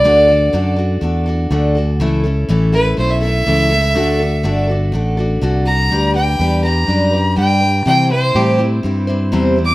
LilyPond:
<<
  \new Staff \with { instrumentName = "Fiddle" } { \time 4/4 \key d \mixolydian \tempo 4 = 123 d''4. r2 r8 | r4. b'8 c''16 e''16 e''4.~ | e''4. r2 bes''8~ | bes''8 g''4 bes''4. g''4 |
g''8 c''8 g'8 r4. \tuplet 3/2 { r4 d'''8 } | }
  \new Staff \with { instrumentName = "Steel-string acoustic guitar" } { \time 4/4 \key d \mixolydian <d a d' fis' a'>8 <d' fis' a'>8 <d a d' fis' a'>8 <d' fis' a'>8 <a d' fis' a'>8 <d' fis' a'>8 <d a d' fis' a'>8 <d' fis' a'>8 | <a, e a cis' e' a'>8 <a cis' e' a'>8 <a, e a cis' e' a'>8 <a cis' e' a'>8 <a cis' e' a'>8 <a cis' e' a'>8 <a, e a cis' e' a'>8 <a cis' e' a'>8 | <d a d' fis' a'>8 <d' fis' a'>8 <d a d' fis' a'>8 <d' fis' a'>8 <a d' fis' a'>8 <d' fis' a'>8 <d a d' fis' a'>8 <d' fis' a'>8 | <g d' g' b'>8 <d' g' b'>8 <g d' g' b'>8 <d' g' b'>8 <g d' g' b'>8 <d' g' b'>8 <g d' g' b'>8 <d' g' b'>8 |
<c e g c' e' c''>8 <g c' e' c''>8 <c e g c' e' c''>8 <g c' e' c''>8 <g c' e' c''>8 <g c' e' c''>8 <c e g c' e' c''>8 <g c' e' c''>8 | }
  \new Staff \with { instrumentName = "Fingered electric bass" } { \clef bass \time 4/4 \key d \mixolydian d,4 fis,4 e,4 d,4 | cis,4 a,,4 b,,4 cis,4 | d,4 g,,4 a,,4 c,4 | d,4 e,4 fis,4 g,4 |
c4 a,4 g,4 e,4 | }
>>